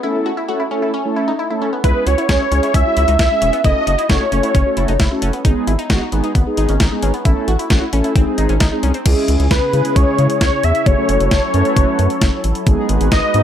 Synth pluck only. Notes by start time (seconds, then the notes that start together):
0.03 E4
0.26 F#4
0.37 E4
0.48 F#4
0.60 E4
0.71 C#4
0.82 E4
0.94 C#4
1.16 E4
1.28 D#4
1.39 E4
1.50 E4
1.62 C#4
1.73 B3
1.84 E4
2.07 F#4
2.18 E4
2.29 G#4
2.41 E4
2.52 C#4
2.63 E4
2.74 C#4
2.97 E4
3.08 D#4
3.19 E4
3.31 E4
3.42 C#4
3.53 B3
3.64 E4
3.87 F#4
3.98 E4
4.09 F#4
4.21 E4
4.32 C#4
4.43 E4
4.54 C#4
4.77 E4
4.89 D#4
5.00 E4
5.11 E4
5.22 C#4
5.34 B3
5.45 D#4
5.67 E4
5.79 D#4
5.90 F#4
6.01 D#4
6.13 B3
6.24 D#4
6.35 B3
6.58 D#4
6.69 C#4
6.80 D#4
6.91 D#4
7.03 C#4
7.14 B3
7.25 E4
7.48 F#4
7.59 E4
7.70 F#4
7.82 E4
7.93 C#4
8.04 E4
8.16 C4
8.38 D#4
8.49 C#4
8.61 D#4
8.72 D#4
8.83 C#4
8.95 C4